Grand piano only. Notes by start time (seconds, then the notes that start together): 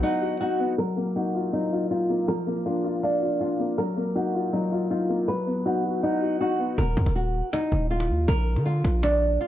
Already playing: F#3 B3 D#4 F#4
0.03 F#5
0.22 F#4
0.41 D#4
0.59 B3
0.78 F#3
0.97 A#3
1.16 D#4
1.35 F4
1.53 F#3
1.72 F4
1.91 D#4
2.09 A#3
2.28 F3
2.47 A#3
2.66 D4
2.84 F4
3.03 F5
3.22 F4
3.41 D4
3.59 A#3
3.78 F#3
3.97 A#3
4.15 D#4
4.34 F4
4.53 F#3
4.72 F4
4.90 D#4
5.09 A#3
5.28 F#3
5.47 B3
5.66 D#4
5.84 F#4
6.03 F#5
6.22 F#4
6.41 D#4
6.59 B3